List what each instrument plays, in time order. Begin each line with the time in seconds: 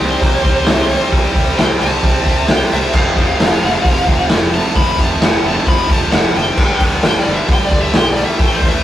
Already playing: tonewheel organ C4 G4 D5, lead electric guitar C5
0.00 picked electric bass C2, distorted electric guitar C3 G3 C4, open hi-hat
0.20 picked electric bass C2, distorted electric guitar C3 G3 C4, kick, open hi-hat
0.43 picked electric bass C2, distorted electric guitar C3 G3 C4, kick, open hi-hat
0.65 picked electric bass C2, distorted electric guitar C3 G3 C4, snare, open hi-hat
0.88 distorted electric guitar C3 G3 C4, open hi-hat
1.11 picked electric bass C2, distorted electric guitar C3 G3 C4, kick, open hi-hat
1.34 picked electric bass C2, distorted electric guitar C3 G3 C4, kick, open hi-hat
1.57 picked electric bass C2, distorted electric guitar C3 G3 C4, lead electric guitar G5, snare, open hi-hat
1.79 picked electric bass C2, distorted electric guitar C3 G3 C4, lead electric guitar A5, open hi-hat
2.03 picked electric bass C2, distorted electric guitar C3 G3 C4, kick, open hi-hat
2.25 picked electric bass C2, distorted electric guitar C3 G3 C4, kick, open hi-hat
2.48 picked electric bass C2, distorted electric guitar C3 G3 C4, lead electric guitar G5, snare, open hi-hat
2.71 picked electric bass C2, distorted electric guitar C3 G3 C4, lead electric guitar E5, open hi-hat
2.93 picked electric bass F1, distorted electric guitar F2 C3 F3, tonewheel organ F3, lead electric guitar F5, kick, crash
3.15 picked electric bass F1, distorted electric guitar F2 C3 F3, kick, open hi-hat
3.38 picked electric bass F1, distorted electric guitar F2 C3 F3, snare, open hi-hat
3.62 picked electric bass F1, distorted electric guitar F2 C3 F3, open hi-hat
3.83 picked electric bass F1, distorted electric guitar F2 C3 F3, kick, open hi-hat
4.06 picked electric bass F1, distorted electric guitar F2 C3 F3, kick, open hi-hat
4.30 picked electric bass F1, distorted electric guitar F2 C3 F3, snare, open hi-hat
4.53 distorted electric guitar F2 C3 F3, lead electric guitar A5, open hi-hat
4.74 picked electric bass F1, distorted electric guitar F2 C3 F3, tonewheel organ F4, lead electric guitar B5, kick, open hi-hat
4.97 picked electric bass F1, distorted electric guitar F2 C3 F3, lead electric guitar A5, kick, open hi-hat
5.19 picked electric bass F1, distorted electric guitar F2 C3 F3, snare, open hi-hat
5.24 lead electric guitar F#5
5.43 picked electric bass F1, distorted electric guitar F2 C3 F3, open hi-hat
5.48 lead electric guitar A5
5.66 picked electric bass F1, distorted electric guitar F2 C3 F3, lead electric guitar B5, kick, open hi-hat
5.89 picked electric bass F1, distorted electric guitar F2 C3 F3, lead electric guitar A5, kick, open hi-hat
6.11 picked electric bass F1, distorted electric guitar F2 C3 F3, lead electric guitar F#5, snare, open hi-hat
6.35 picked electric bass F#1, distorted electric guitar F2 C3 F3, lead electric guitar G5, open hi-hat
6.56 picked electric bass G1, distorted electric guitar G2 D3 G3, tonewheel organ G3 D4 A4, kick, crash
6.80 picked electric bass G1, distorted electric guitar G2 D3 G3, kick, open hi-hat
7.03 picked electric bass G1, distorted electric guitar G2 D3 G3, lead electric guitar G5, snare, open hi-hat
7.19 lead electric guitar D5
7.25 picked electric bass G1, distorted electric guitar G2 D3 G3, open hi-hat
7.34 lead electric guitar E5
7.47 picked electric bass G1, distorted electric guitar G2 D3 G3, lead electric guitar G5, kick, open hi-hat
7.65 lead electric guitar D5
7.70 picked electric bass G1, distorted electric guitar G2 D3 G3, kick, open hi-hat
7.81 lead electric guitar E5
7.94 picked electric bass B1, distorted electric guitar G2 D3 G3, lead electric guitar G5, snare, open hi-hat
8.12 distorted electric guitar G2, lead electric guitar D5
8.16 distorted electric guitar D3 G3, open hi-hat
8.25 lead electric guitar E5
8.38 picked electric bass A1, distorted electric guitar A2 E3 A3, tonewheel organ A3 E4 B4, lead electric guitar G5, kick, open hi-hat
8.55 lead electric guitar C5
8.61 picked electric bass A1, distorted electric guitar A2 E3 A3, kick, open hi-hat
8.68 lead electric guitar E5